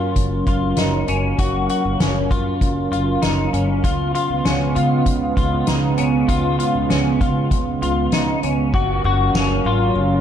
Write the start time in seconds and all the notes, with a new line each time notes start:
Already playing: F#2 F#3 C#4 F4 A#4 F5
0.16 F#1, kick, closed hi-hat
0.47 F#1 F4, kick, closed hi-hat
0.77 F#1 D#4, snare, closed hi-hat
1.08 F#1 C#4, closed hi-hat
1.39 F#1 F#4, kick, closed hi-hat
1.69 F#4, closed hi-hat
1.85 F#1
2.00 F#1 C#4, snare, closed hi-hat
2.31 F#2 F4, kick, closed hi-hat
2.61 F#1, kick, closed hi-hat
2.91 F#1 F4, closed hi-hat
3.22 F#1 D#4, snare, closed hi-hat
3.53 F#1 C#4, closed hi-hat
3.83 C#2 C#3 G#3 B3 F4, kick, closed hi-hat
4.15 F4, closed hi-hat
4.30 C#2
4.45 C#2 C#4, snare, closed hi-hat
4.75 C#3 F4, closed hi-hat
5.06 kick, closed hi-hat
5.37 C#2 F4, kick, closed hi-hat
5.67 C#2 D#4, snare, closed hi-hat
5.98 C#2 C#4, closed hi-hat
6.29 C#2 F4, kick, closed hi-hat
6.59 F4, closed hi-hat
6.75 C#2
6.90 C#2 C#4, snare, closed hi-hat
7.21 C#3 F4, kick, closed hi-hat
7.51 C#2, kick, closed hi-hat
7.82 C#2 F4, closed hi-hat
8.12 C#2 D#4, snare, closed hi-hat
8.43 C#2 C#4, closed hi-hat
8.74 F#1 F#3 C#4 F#4 A#4 F5, kick, crash
9.04 F#1 F#4
9.34 F#1 C#4, snare, ride, tambourine
9.65 G#1 F4
9.95 F#1, ride